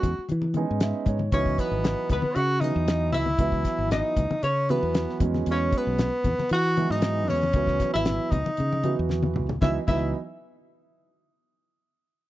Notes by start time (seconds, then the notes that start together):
Already playing: F#4
0.03 E2, kick, closed hi-hat, low conga
0.19 muted fingered electric bass stroke
0.29 E3, closed hi-hat, high conga
0.42 high conga
0.54 G#3 B3 C#4 D#4 G#5, closed hi-hat, high conga
0.71 G#2
0.80 E5, snare, closed hi-hat
1.06 G#2 C#5, kick, closed hi-hat, low conga
1.19 high conga
1.32 C#2 E3 F#3 B3 C#4 D#4 C#5, kick, closed hi-hat
1.46 kick
1.58 B3 B4, kick, closed hi-hat
1.71 G#1
1.84 snare, closed hi-hat, low conga
2.09 C#2 B3 B4, kick, closed hi-hat, low conga
2.22 muted fingered electric bass stroke, high conga
2.36 C#3 F#4 F#5, closed hi-hat
2.60 E3 F#3 B3 D#4 D#5, closed hi-hat, high conga
2.76 E2
2.88 snare, closed hi-hat
3.12 C#2 E4 E5, open hi-hat, low conga
3.26 high conga
3.39 C#2 E3 F#3 B3 E4, kick, closed hi-hat
3.52 kick
3.65 kick, snare, closed hi-hat
3.78 G#1
3.91 D#4 D#5, snare, closed hi-hat, low conga
4.17 C#2, kick, closed hi-hat, low conga
4.31 muted fingered electric bass stroke, high conga
4.43 C#3 C#4 C#5, closed hi-hat
4.69 E3 F#3 B3 F#4 B4, closed hi-hat, high conga
4.83 E2
4.94 snare, closed hi-hat
5.09 snare
5.20 E2 F#3 G#3 B3 C#4, kick, closed hi-hat, low conga
5.34 snare, high conga
5.46 E2, closed hi-hat
5.51 C#4 C#5
5.72 kick, closed hi-hat
5.77 B3 B4
5.87 B1
5.99 snare, closed hi-hat, low conga
6.24 E2, kick, closed hi-hat, low conga
6.38 muted fingered electric bass stroke, snare, high conga
6.49 E3 F#4, closed hi-hat
6.54 F#5
6.77 E3 F#3 G#3 B3, closed hi-hat, high conga
6.90 G#2 D#4 D#5
7.02 snare, closed hi-hat
7.28 E2 C#4 C#5, open hi-hat, low conga
7.43 high conga
7.53 C#2 E3 F#3 B3 E4, kick, closed hi-hat
7.67 kick, snare
7.80 kick, snare, closed hi-hat, low conga
7.93 G#1 E4 E5
8.05 snare, closed hi-hat, low conga
8.31 C#2 D#4 D#5, kick, closed hi-hat, low conga
8.46 high conga
8.57 C#3, closed hi-hat, high conga
8.73 high conga
8.83 E3 F#3 B3 F#4, closed hi-hat, high conga
8.99 E2
9.09 snare, high conga
9.22 high tom, high conga
9.36 C#2, mid tom, low conga
9.49 floor tom, low conga
9.61 C#2 E3 F#3 B3 D#4 E4 E5, kick, snare, high conga
9.87 C#2 E3 F#3 B3 D#4 E4 E5, kick, crash, high conga